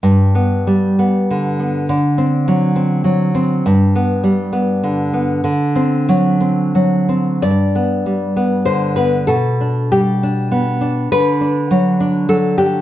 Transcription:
\new Staff \with { instrumentName = "Nylon-string guitar" } { \time 3/4 \key g \major \tempo 4 = 100 << { r2. | r2. | r2. | r2. |
d''2 c''8 b'8 | a'4 g'2 | b'2 a'8 g'8 | } \\ { g,8 b8 g8 b8 d8 b8 | d8 c'8 fis8 c'8 fis8 c'8 | g,8 b8 g8 b8 d8 b8 | d8 c'8 fis8 c'8 fis8 c'8 |
g,8 b8 g8 b8 d8 b8 | b,8 d'8 g8 d'8 b8 d'8 | d8 d'8 fis8 d'8 fis8 d'8 | } >> }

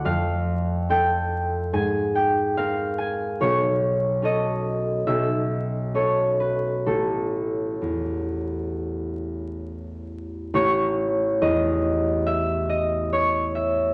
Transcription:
\new Staff \with { instrumentName = "Harp" } { \time 4/4 \key a \lydian \tempo 4 = 70 << { f''4 g''4 gis''8 g''8 f''8 gis''8 | cis''4 dis''4 e''4 cis''8 b'8 | a'1 | cis''4 dis''4 e''8 dis''8 cis''8 e''8 | } \\ { <f, a'>4 <c' a'>4 gis,4 <bis ais'>4 | b,,4 <cis' a'>4 b,,4 <cis' a'>4 | a,,4 e,2. | a,,4 e,2. | } >> }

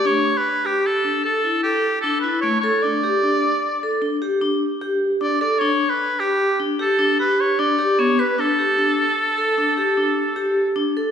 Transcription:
<<
  \new Staff \with { instrumentName = "Oboe" } { \time 7/4 \key a \mixolydian \tempo 4 = 152 cis''8. b'8. g'8 a'4 a'4 g'4 a'8 b'8 cis''8 cis''8 | d''2. r2. d''8 d''8 | cis''8. b'8. g'4 r8 a'4 b'8 cis''8 d''4 cis''8 b'8 | a'1. r4 | }
  \new Staff \with { instrumentName = "Vibraphone" } { \time 7/4 \key a \mixolydian d'4 r8 g'4 d'8 a'8 e'8 a'4 d'8 e'8 a8 a'8 | d'8 g'8 d'4 r8 a'8 d'8 g'8 d'4 g'4 d'8 a'8 | d'4 r8 g'4 d'8 g'8 d'8 g'4 d'8 g'8 b8 b'8 | d'8 g'8 d'4 r8 a'8 d'8 g'8 d'4 g'4 d'8 a'8 | }
>>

